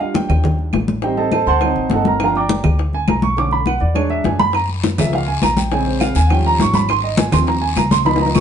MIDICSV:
0, 0, Header, 1, 4, 480
1, 0, Start_track
1, 0, Tempo, 292969
1, 1686, Time_signature, 4, 2, 24, 8
1, 13767, End_track
2, 0, Start_track
2, 0, Title_t, "Grand piano"
2, 0, Program_c, 0, 0
2, 0, Note_on_c, 0, 55, 48
2, 0, Note_on_c, 0, 77, 77
2, 1, Note_on_c, 0, 62, 44
2, 7, Note_on_c, 0, 65, 49
2, 236, Note_off_c, 0, 77, 0
2, 236, Note_on_c, 0, 79, 86
2, 445, Note_off_c, 0, 79, 0
2, 470, Note_on_c, 0, 79, 81
2, 924, Note_off_c, 0, 79, 0
2, 1609, Note_off_c, 0, 55, 0
2, 1619, Note_off_c, 0, 62, 0
2, 1622, Note_off_c, 0, 65, 0
2, 1682, Note_on_c, 0, 55, 52
2, 1688, Note_on_c, 0, 60, 44
2, 1691, Note_on_c, 0, 79, 73
2, 1692, Note_on_c, 0, 63, 60
2, 1701, Note_on_c, 0, 67, 64
2, 1702, Note_on_c, 0, 72, 62
2, 1704, Note_on_c, 0, 75, 62
2, 1902, Note_off_c, 0, 75, 0
2, 1910, Note_off_c, 0, 72, 0
2, 1922, Note_off_c, 0, 79, 0
2, 1922, Note_on_c, 0, 81, 78
2, 1926, Note_on_c, 0, 75, 73
2, 1927, Note_off_c, 0, 67, 0
2, 1928, Note_on_c, 0, 69, 70
2, 1935, Note_on_c, 0, 72, 63
2, 2004, Note_off_c, 0, 55, 0
2, 2007, Note_off_c, 0, 60, 0
2, 2009, Note_off_c, 0, 63, 0
2, 2135, Note_off_c, 0, 81, 0
2, 2140, Note_off_c, 0, 69, 0
2, 2145, Note_off_c, 0, 72, 0
2, 2147, Note_off_c, 0, 75, 0
2, 2160, Note_on_c, 0, 81, 83
2, 2165, Note_on_c, 0, 69, 71
2, 2169, Note_on_c, 0, 72, 65
2, 2172, Note_on_c, 0, 75, 62
2, 2391, Note_off_c, 0, 81, 0
2, 2395, Note_off_c, 0, 72, 0
2, 2399, Note_off_c, 0, 69, 0
2, 2403, Note_off_c, 0, 75, 0
2, 2409, Note_on_c, 0, 84, 103
2, 2416, Note_on_c, 0, 81, 91
2, 2419, Note_on_c, 0, 72, 88
2, 2427, Note_on_c, 0, 78, 88
2, 2667, Note_on_c, 0, 54, 53
2, 2672, Note_on_c, 0, 60, 52
2, 2683, Note_on_c, 0, 63, 66
2, 3078, Note_off_c, 0, 84, 0
2, 3082, Note_off_c, 0, 81, 0
2, 3084, Note_off_c, 0, 72, 0
2, 3088, Note_off_c, 0, 78, 0
2, 3165, Note_on_c, 0, 81, 72
2, 3169, Note_on_c, 0, 75, 61
2, 3172, Note_on_c, 0, 69, 69
2, 3172, Note_on_c, 0, 78, 66
2, 3380, Note_off_c, 0, 81, 0
2, 3382, Note_off_c, 0, 75, 0
2, 3383, Note_off_c, 0, 69, 0
2, 3384, Note_off_c, 0, 78, 0
2, 3398, Note_on_c, 0, 82, 77
2, 3402, Note_on_c, 0, 70, 63
2, 3571, Note_off_c, 0, 54, 0
2, 3573, Note_off_c, 0, 60, 0
2, 3579, Note_off_c, 0, 63, 0
2, 3616, Note_off_c, 0, 82, 0
2, 3618, Note_off_c, 0, 70, 0
2, 3645, Note_on_c, 0, 53, 56
2, 3653, Note_on_c, 0, 58, 49
2, 3663, Note_on_c, 0, 62, 59
2, 3663, Note_on_c, 0, 82, 84
2, 3664, Note_on_c, 0, 79, 68
2, 3670, Note_on_c, 0, 70, 62
2, 3671, Note_on_c, 0, 77, 67
2, 3860, Note_off_c, 0, 82, 0
2, 3869, Note_off_c, 0, 79, 0
2, 3873, Note_off_c, 0, 70, 0
2, 3873, Note_off_c, 0, 77, 0
2, 3879, Note_on_c, 0, 86, 90
2, 3884, Note_on_c, 0, 82, 71
2, 3887, Note_on_c, 0, 74, 73
2, 3893, Note_on_c, 0, 79, 72
2, 3947, Note_off_c, 0, 53, 0
2, 3951, Note_off_c, 0, 58, 0
2, 3957, Note_off_c, 0, 62, 0
2, 4535, Note_off_c, 0, 86, 0
2, 4538, Note_off_c, 0, 82, 0
2, 4539, Note_off_c, 0, 74, 0
2, 4542, Note_off_c, 0, 79, 0
2, 4824, Note_on_c, 0, 80, 96
2, 5050, Note_off_c, 0, 80, 0
2, 5065, Note_on_c, 0, 82, 77
2, 5287, Note_on_c, 0, 85, 99
2, 5290, Note_off_c, 0, 82, 0
2, 5515, Note_on_c, 0, 50, 54
2, 5521, Note_off_c, 0, 85, 0
2, 5526, Note_on_c, 0, 57, 50
2, 5537, Note_on_c, 0, 61, 59
2, 5540, Note_on_c, 0, 86, 101
2, 5768, Note_off_c, 0, 86, 0
2, 5774, Note_on_c, 0, 83, 87
2, 5841, Note_off_c, 0, 50, 0
2, 5847, Note_off_c, 0, 57, 0
2, 5853, Note_off_c, 0, 61, 0
2, 6005, Note_off_c, 0, 83, 0
2, 6007, Note_on_c, 0, 78, 90
2, 6239, Note_on_c, 0, 74, 75
2, 6241, Note_off_c, 0, 78, 0
2, 6457, Note_on_c, 0, 54, 55
2, 6471, Note_on_c, 0, 56, 47
2, 6475, Note_on_c, 0, 73, 80
2, 6477, Note_off_c, 0, 74, 0
2, 6479, Note_on_c, 0, 62, 64
2, 6715, Note_off_c, 0, 73, 0
2, 6723, Note_on_c, 0, 76, 88
2, 6959, Note_off_c, 0, 76, 0
2, 6971, Note_on_c, 0, 80, 80
2, 7157, Note_off_c, 0, 54, 0
2, 7164, Note_off_c, 0, 56, 0
2, 7168, Note_off_c, 0, 62, 0
2, 7200, Note_on_c, 0, 83, 111
2, 7203, Note_off_c, 0, 80, 0
2, 7438, Note_off_c, 0, 83, 0
2, 7446, Note_on_c, 0, 82, 92
2, 7591, Note_off_c, 0, 82, 0
2, 8174, Note_on_c, 0, 53, 54
2, 8184, Note_on_c, 0, 76, 82
2, 8187, Note_on_c, 0, 56, 50
2, 8187, Note_on_c, 0, 58, 57
2, 8410, Note_off_c, 0, 76, 0
2, 8436, Note_on_c, 0, 77, 79
2, 8491, Note_off_c, 0, 53, 0
2, 8498, Note_off_c, 0, 56, 0
2, 8498, Note_off_c, 0, 58, 0
2, 8648, Note_on_c, 0, 80, 90
2, 8656, Note_off_c, 0, 77, 0
2, 8882, Note_off_c, 0, 80, 0
2, 8897, Note_on_c, 0, 82, 98
2, 9125, Note_on_c, 0, 79, 77
2, 9126, Note_off_c, 0, 82, 0
2, 9360, Note_off_c, 0, 79, 0
2, 9366, Note_on_c, 0, 49, 61
2, 9370, Note_on_c, 0, 56, 54
2, 9373, Note_on_c, 0, 80, 93
2, 9387, Note_on_c, 0, 60, 61
2, 9604, Note_off_c, 0, 80, 0
2, 9608, Note_on_c, 0, 72, 65
2, 9842, Note_off_c, 0, 72, 0
2, 9846, Note_on_c, 0, 77, 82
2, 10051, Note_off_c, 0, 49, 0
2, 10053, Note_off_c, 0, 56, 0
2, 10062, Note_off_c, 0, 60, 0
2, 10080, Note_off_c, 0, 77, 0
2, 10092, Note_on_c, 0, 80, 106
2, 10272, Note_on_c, 0, 78, 59
2, 10307, Note_off_c, 0, 78, 0
2, 10323, Note_off_c, 0, 80, 0
2, 10330, Note_on_c, 0, 53, 63
2, 10345, Note_on_c, 0, 55, 54
2, 10353, Note_on_c, 0, 61, 66
2, 10357, Note_on_c, 0, 79, 91
2, 10576, Note_off_c, 0, 79, 0
2, 10592, Note_on_c, 0, 82, 105
2, 10813, Note_off_c, 0, 82, 0
2, 10836, Note_on_c, 0, 85, 105
2, 11055, Note_off_c, 0, 85, 0
2, 11058, Note_on_c, 0, 83, 84
2, 11241, Note_off_c, 0, 53, 0
2, 11249, Note_off_c, 0, 55, 0
2, 11253, Note_off_c, 0, 61, 0
2, 11286, Note_off_c, 0, 83, 0
2, 11302, Note_on_c, 0, 84, 112
2, 11528, Note_off_c, 0, 84, 0
2, 11532, Note_on_c, 0, 75, 73
2, 11763, Note_off_c, 0, 75, 0
2, 11766, Note_on_c, 0, 80, 83
2, 11999, Note_off_c, 0, 80, 0
2, 12002, Note_on_c, 0, 53, 59
2, 12005, Note_on_c, 0, 84, 102
2, 12013, Note_on_c, 0, 58, 47
2, 12020, Note_on_c, 0, 60, 67
2, 12239, Note_off_c, 0, 84, 0
2, 12249, Note_on_c, 0, 82, 80
2, 12324, Note_off_c, 0, 53, 0
2, 12330, Note_off_c, 0, 58, 0
2, 12333, Note_off_c, 0, 60, 0
2, 12478, Note_on_c, 0, 80, 96
2, 12481, Note_off_c, 0, 82, 0
2, 12715, Note_off_c, 0, 80, 0
2, 12731, Note_on_c, 0, 82, 90
2, 12962, Note_off_c, 0, 82, 0
2, 12965, Note_on_c, 0, 84, 115
2, 13188, Note_on_c, 0, 53, 59
2, 13192, Note_on_c, 0, 59, 49
2, 13199, Note_off_c, 0, 84, 0
2, 13205, Note_on_c, 0, 83, 94
2, 13207, Note_on_c, 0, 63, 67
2, 13439, Note_off_c, 0, 83, 0
2, 13446, Note_on_c, 0, 82, 86
2, 13675, Note_on_c, 0, 85, 95
2, 13679, Note_off_c, 0, 82, 0
2, 13767, Note_off_c, 0, 53, 0
2, 13767, Note_off_c, 0, 59, 0
2, 13767, Note_off_c, 0, 63, 0
2, 13767, Note_off_c, 0, 85, 0
2, 13767, End_track
3, 0, Start_track
3, 0, Title_t, "Upright bass"
3, 0, Program_c, 1, 32
3, 478, Note_on_c, 1, 39, 89
3, 1152, Note_off_c, 1, 39, 0
3, 1207, Note_on_c, 1, 33, 93
3, 2318, Note_off_c, 1, 33, 0
3, 2401, Note_on_c, 1, 38, 83
3, 2851, Note_off_c, 1, 38, 0
3, 2887, Note_on_c, 1, 33, 68
3, 3111, Note_off_c, 1, 33, 0
3, 3127, Note_on_c, 1, 31, 78
3, 4239, Note_off_c, 1, 31, 0
3, 4327, Note_on_c, 1, 38, 82
3, 4998, Note_off_c, 1, 38, 0
3, 5047, Note_on_c, 1, 35, 85
3, 6159, Note_off_c, 1, 35, 0
3, 6246, Note_on_c, 1, 40, 77
3, 6917, Note_off_c, 1, 40, 0
3, 6971, Note_on_c, 1, 42, 84
3, 8081, Note_off_c, 1, 42, 0
3, 8178, Note_on_c, 1, 37, 83
3, 8843, Note_off_c, 1, 37, 0
3, 8897, Note_on_c, 1, 34, 81
3, 10003, Note_off_c, 1, 34, 0
3, 10082, Note_on_c, 1, 39, 92
3, 10755, Note_off_c, 1, 39, 0
3, 10804, Note_on_c, 1, 32, 86
3, 11916, Note_off_c, 1, 32, 0
3, 12005, Note_on_c, 1, 39, 93
3, 12675, Note_off_c, 1, 39, 0
3, 12723, Note_on_c, 1, 37, 89
3, 13767, Note_off_c, 1, 37, 0
3, 13767, End_track
4, 0, Start_track
4, 0, Title_t, "Drums"
4, 13, Note_on_c, 9, 63, 32
4, 177, Note_off_c, 9, 63, 0
4, 236, Note_on_c, 9, 60, 60
4, 246, Note_on_c, 9, 63, 92
4, 400, Note_off_c, 9, 60, 0
4, 410, Note_off_c, 9, 63, 0
4, 486, Note_on_c, 9, 75, 57
4, 487, Note_on_c, 9, 64, 79
4, 650, Note_off_c, 9, 75, 0
4, 651, Note_off_c, 9, 64, 0
4, 716, Note_on_c, 9, 60, 59
4, 734, Note_on_c, 9, 63, 34
4, 734, Note_on_c, 9, 64, 71
4, 880, Note_off_c, 9, 60, 0
4, 898, Note_off_c, 9, 63, 0
4, 898, Note_off_c, 9, 64, 0
4, 961, Note_on_c, 9, 63, 35
4, 1124, Note_off_c, 9, 63, 0
4, 1193, Note_on_c, 9, 75, 59
4, 1197, Note_on_c, 9, 63, 77
4, 1206, Note_on_c, 9, 60, 64
4, 1206, Note_on_c, 9, 61, 87
4, 1356, Note_off_c, 9, 75, 0
4, 1361, Note_off_c, 9, 63, 0
4, 1370, Note_off_c, 9, 60, 0
4, 1370, Note_off_c, 9, 61, 0
4, 1443, Note_on_c, 9, 63, 82
4, 1607, Note_off_c, 9, 63, 0
4, 1674, Note_on_c, 9, 60, 69
4, 1686, Note_on_c, 9, 63, 32
4, 1837, Note_off_c, 9, 60, 0
4, 1849, Note_off_c, 9, 63, 0
4, 1922, Note_on_c, 9, 63, 34
4, 1934, Note_on_c, 9, 60, 38
4, 2086, Note_off_c, 9, 63, 0
4, 2098, Note_off_c, 9, 60, 0
4, 2153, Note_on_c, 9, 63, 56
4, 2165, Note_on_c, 9, 75, 65
4, 2171, Note_on_c, 9, 60, 67
4, 2317, Note_off_c, 9, 63, 0
4, 2329, Note_off_c, 9, 75, 0
4, 2335, Note_off_c, 9, 60, 0
4, 2396, Note_on_c, 9, 63, 36
4, 2405, Note_on_c, 9, 60, 39
4, 2559, Note_off_c, 9, 63, 0
4, 2569, Note_off_c, 9, 60, 0
4, 2635, Note_on_c, 9, 60, 65
4, 2635, Note_on_c, 9, 63, 32
4, 2647, Note_on_c, 9, 75, 55
4, 2799, Note_off_c, 9, 60, 0
4, 2799, Note_off_c, 9, 63, 0
4, 2811, Note_off_c, 9, 75, 0
4, 2879, Note_on_c, 9, 63, 35
4, 3042, Note_off_c, 9, 63, 0
4, 3107, Note_on_c, 9, 63, 84
4, 3130, Note_on_c, 9, 60, 69
4, 3130, Note_on_c, 9, 61, 82
4, 3271, Note_off_c, 9, 63, 0
4, 3294, Note_off_c, 9, 60, 0
4, 3294, Note_off_c, 9, 61, 0
4, 3359, Note_on_c, 9, 63, 83
4, 3372, Note_on_c, 9, 60, 34
4, 3522, Note_off_c, 9, 63, 0
4, 3536, Note_off_c, 9, 60, 0
4, 3602, Note_on_c, 9, 60, 73
4, 3605, Note_on_c, 9, 75, 63
4, 3611, Note_on_c, 9, 63, 36
4, 3766, Note_off_c, 9, 60, 0
4, 3769, Note_off_c, 9, 75, 0
4, 3775, Note_off_c, 9, 63, 0
4, 3858, Note_on_c, 9, 63, 33
4, 4022, Note_off_c, 9, 63, 0
4, 4086, Note_on_c, 9, 63, 92
4, 4093, Note_on_c, 9, 60, 60
4, 4250, Note_off_c, 9, 63, 0
4, 4257, Note_off_c, 9, 60, 0
4, 4323, Note_on_c, 9, 64, 84
4, 4323, Note_on_c, 9, 75, 58
4, 4487, Note_off_c, 9, 64, 0
4, 4487, Note_off_c, 9, 75, 0
4, 4568, Note_on_c, 9, 63, 33
4, 4576, Note_on_c, 9, 60, 60
4, 4731, Note_off_c, 9, 63, 0
4, 4740, Note_off_c, 9, 60, 0
4, 4804, Note_on_c, 9, 63, 36
4, 4968, Note_off_c, 9, 63, 0
4, 5040, Note_on_c, 9, 63, 85
4, 5041, Note_on_c, 9, 75, 65
4, 5052, Note_on_c, 9, 60, 70
4, 5052, Note_on_c, 9, 61, 87
4, 5204, Note_off_c, 9, 63, 0
4, 5205, Note_off_c, 9, 75, 0
4, 5216, Note_off_c, 9, 60, 0
4, 5216, Note_off_c, 9, 61, 0
4, 5280, Note_on_c, 9, 63, 89
4, 5444, Note_off_c, 9, 63, 0
4, 5522, Note_on_c, 9, 63, 34
4, 5541, Note_on_c, 9, 60, 66
4, 5685, Note_off_c, 9, 63, 0
4, 5705, Note_off_c, 9, 60, 0
4, 5755, Note_on_c, 9, 63, 33
4, 5783, Note_on_c, 9, 60, 33
4, 5919, Note_off_c, 9, 63, 0
4, 5947, Note_off_c, 9, 60, 0
4, 5991, Note_on_c, 9, 63, 58
4, 6009, Note_on_c, 9, 60, 59
4, 6013, Note_on_c, 9, 75, 60
4, 6155, Note_off_c, 9, 63, 0
4, 6173, Note_off_c, 9, 60, 0
4, 6177, Note_off_c, 9, 75, 0
4, 6230, Note_on_c, 9, 63, 37
4, 6248, Note_on_c, 9, 60, 40
4, 6394, Note_off_c, 9, 63, 0
4, 6412, Note_off_c, 9, 60, 0
4, 6473, Note_on_c, 9, 63, 34
4, 6481, Note_on_c, 9, 75, 60
4, 6487, Note_on_c, 9, 60, 65
4, 6637, Note_off_c, 9, 63, 0
4, 6645, Note_off_c, 9, 75, 0
4, 6650, Note_off_c, 9, 60, 0
4, 6712, Note_on_c, 9, 63, 34
4, 6876, Note_off_c, 9, 63, 0
4, 6952, Note_on_c, 9, 63, 81
4, 6966, Note_on_c, 9, 60, 68
4, 6966, Note_on_c, 9, 61, 92
4, 7116, Note_off_c, 9, 63, 0
4, 7129, Note_off_c, 9, 60, 0
4, 7129, Note_off_c, 9, 61, 0
4, 7200, Note_on_c, 9, 63, 84
4, 7201, Note_on_c, 9, 60, 34
4, 7364, Note_off_c, 9, 63, 0
4, 7365, Note_off_c, 9, 60, 0
4, 7425, Note_on_c, 9, 60, 65
4, 7440, Note_on_c, 9, 63, 39
4, 7447, Note_on_c, 9, 75, 61
4, 7448, Note_on_c, 9, 74, 69
4, 7589, Note_off_c, 9, 60, 0
4, 7604, Note_off_c, 9, 63, 0
4, 7611, Note_off_c, 9, 75, 0
4, 7612, Note_off_c, 9, 74, 0
4, 7681, Note_on_c, 9, 63, 35
4, 7845, Note_off_c, 9, 63, 0
4, 7920, Note_on_c, 9, 73, 59
4, 7923, Note_on_c, 9, 63, 87
4, 7930, Note_on_c, 9, 60, 65
4, 8084, Note_off_c, 9, 73, 0
4, 8087, Note_off_c, 9, 63, 0
4, 8094, Note_off_c, 9, 60, 0
4, 8164, Note_on_c, 9, 64, 83
4, 8166, Note_on_c, 9, 73, 73
4, 8173, Note_on_c, 9, 75, 60
4, 8328, Note_off_c, 9, 64, 0
4, 8329, Note_off_c, 9, 73, 0
4, 8337, Note_off_c, 9, 75, 0
4, 8405, Note_on_c, 9, 60, 67
4, 8411, Note_on_c, 9, 74, 76
4, 8413, Note_on_c, 9, 63, 39
4, 8569, Note_off_c, 9, 60, 0
4, 8575, Note_off_c, 9, 74, 0
4, 8577, Note_off_c, 9, 63, 0
4, 8648, Note_on_c, 9, 63, 36
4, 8812, Note_off_c, 9, 63, 0
4, 8875, Note_on_c, 9, 63, 77
4, 8890, Note_on_c, 9, 60, 70
4, 8890, Note_on_c, 9, 61, 80
4, 8892, Note_on_c, 9, 75, 64
4, 8897, Note_on_c, 9, 73, 73
4, 9039, Note_off_c, 9, 63, 0
4, 9054, Note_off_c, 9, 60, 0
4, 9054, Note_off_c, 9, 61, 0
4, 9055, Note_off_c, 9, 75, 0
4, 9061, Note_off_c, 9, 73, 0
4, 9120, Note_on_c, 9, 63, 83
4, 9126, Note_on_c, 9, 73, 75
4, 9284, Note_off_c, 9, 63, 0
4, 9290, Note_off_c, 9, 73, 0
4, 9364, Note_on_c, 9, 60, 70
4, 9368, Note_on_c, 9, 63, 34
4, 9376, Note_on_c, 9, 74, 70
4, 9528, Note_off_c, 9, 60, 0
4, 9532, Note_off_c, 9, 63, 0
4, 9540, Note_off_c, 9, 74, 0
4, 9600, Note_on_c, 9, 63, 35
4, 9613, Note_on_c, 9, 60, 37
4, 9764, Note_off_c, 9, 63, 0
4, 9776, Note_off_c, 9, 60, 0
4, 9838, Note_on_c, 9, 75, 63
4, 9849, Note_on_c, 9, 73, 60
4, 9850, Note_on_c, 9, 63, 58
4, 9851, Note_on_c, 9, 60, 61
4, 10002, Note_off_c, 9, 75, 0
4, 10013, Note_off_c, 9, 73, 0
4, 10014, Note_off_c, 9, 63, 0
4, 10015, Note_off_c, 9, 60, 0
4, 10077, Note_on_c, 9, 73, 72
4, 10089, Note_on_c, 9, 60, 39
4, 10095, Note_on_c, 9, 63, 36
4, 10241, Note_off_c, 9, 73, 0
4, 10253, Note_off_c, 9, 60, 0
4, 10259, Note_off_c, 9, 63, 0
4, 10317, Note_on_c, 9, 74, 72
4, 10327, Note_on_c, 9, 75, 64
4, 10330, Note_on_c, 9, 60, 66
4, 10338, Note_on_c, 9, 63, 35
4, 10481, Note_off_c, 9, 74, 0
4, 10491, Note_off_c, 9, 75, 0
4, 10494, Note_off_c, 9, 60, 0
4, 10502, Note_off_c, 9, 63, 0
4, 10563, Note_on_c, 9, 63, 38
4, 10727, Note_off_c, 9, 63, 0
4, 10803, Note_on_c, 9, 63, 79
4, 10809, Note_on_c, 9, 73, 68
4, 10810, Note_on_c, 9, 60, 71
4, 10810, Note_on_c, 9, 61, 90
4, 10967, Note_off_c, 9, 63, 0
4, 10973, Note_off_c, 9, 73, 0
4, 10974, Note_off_c, 9, 60, 0
4, 10974, Note_off_c, 9, 61, 0
4, 11037, Note_on_c, 9, 63, 90
4, 11044, Note_on_c, 9, 73, 67
4, 11050, Note_on_c, 9, 60, 39
4, 11200, Note_off_c, 9, 63, 0
4, 11208, Note_off_c, 9, 73, 0
4, 11214, Note_off_c, 9, 60, 0
4, 11277, Note_on_c, 9, 63, 35
4, 11283, Note_on_c, 9, 74, 63
4, 11287, Note_on_c, 9, 75, 70
4, 11299, Note_on_c, 9, 60, 65
4, 11441, Note_off_c, 9, 63, 0
4, 11447, Note_off_c, 9, 74, 0
4, 11450, Note_off_c, 9, 75, 0
4, 11463, Note_off_c, 9, 60, 0
4, 11520, Note_on_c, 9, 63, 35
4, 11684, Note_off_c, 9, 63, 0
4, 11755, Note_on_c, 9, 63, 102
4, 11758, Note_on_c, 9, 73, 74
4, 11768, Note_on_c, 9, 60, 67
4, 11919, Note_off_c, 9, 63, 0
4, 11922, Note_off_c, 9, 73, 0
4, 11931, Note_off_c, 9, 60, 0
4, 11996, Note_on_c, 9, 64, 88
4, 12001, Note_on_c, 9, 73, 66
4, 12002, Note_on_c, 9, 75, 67
4, 12160, Note_off_c, 9, 64, 0
4, 12165, Note_off_c, 9, 73, 0
4, 12166, Note_off_c, 9, 75, 0
4, 12240, Note_on_c, 9, 63, 36
4, 12243, Note_on_c, 9, 74, 78
4, 12256, Note_on_c, 9, 60, 73
4, 12404, Note_off_c, 9, 63, 0
4, 12406, Note_off_c, 9, 74, 0
4, 12420, Note_off_c, 9, 60, 0
4, 12481, Note_on_c, 9, 63, 37
4, 12645, Note_off_c, 9, 63, 0
4, 12714, Note_on_c, 9, 73, 74
4, 12721, Note_on_c, 9, 63, 72
4, 12726, Note_on_c, 9, 75, 71
4, 12736, Note_on_c, 9, 60, 73
4, 12736, Note_on_c, 9, 61, 90
4, 12878, Note_off_c, 9, 73, 0
4, 12884, Note_off_c, 9, 63, 0
4, 12889, Note_off_c, 9, 75, 0
4, 12900, Note_off_c, 9, 60, 0
4, 12900, Note_off_c, 9, 61, 0
4, 12962, Note_on_c, 9, 63, 97
4, 12967, Note_on_c, 9, 73, 75
4, 13125, Note_off_c, 9, 63, 0
4, 13131, Note_off_c, 9, 73, 0
4, 13203, Note_on_c, 9, 60, 94
4, 13210, Note_on_c, 9, 74, 69
4, 13213, Note_on_c, 9, 63, 37
4, 13367, Note_off_c, 9, 60, 0
4, 13367, Note_on_c, 9, 60, 104
4, 13373, Note_off_c, 9, 74, 0
4, 13376, Note_off_c, 9, 63, 0
4, 13449, Note_on_c, 9, 63, 34
4, 13531, Note_off_c, 9, 60, 0
4, 13535, Note_on_c, 9, 60, 76
4, 13613, Note_off_c, 9, 63, 0
4, 13677, Note_on_c, 9, 75, 61
4, 13682, Note_on_c, 9, 73, 76
4, 13687, Note_on_c, 9, 63, 62
4, 13697, Note_on_c, 9, 61, 114
4, 13698, Note_off_c, 9, 60, 0
4, 13767, Note_off_c, 9, 61, 0
4, 13767, Note_off_c, 9, 63, 0
4, 13767, Note_off_c, 9, 73, 0
4, 13767, Note_off_c, 9, 75, 0
4, 13767, End_track
0, 0, End_of_file